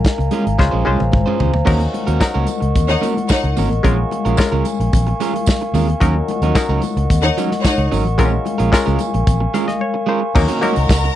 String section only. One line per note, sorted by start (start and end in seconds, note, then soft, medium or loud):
2.89 3.01 D#4 loud
2.89 3.01 C#5 medium
2.89 3.01 F#5 loud
3.29 3.53 D#4 medium
3.29 3.53 C#5 medium
3.29 3.53 F#5 medium
7.23 7.35 D#4 loud
7.23 7.35 C#5 loud
7.23 7.35 F#5 loud
7.64 7.87 D#4 medium
7.64 7.87 C#5 medium
7.64 7.87 F#5 loud
10.36 11.16 A#4 loud
10.36 11.16 A#5 loud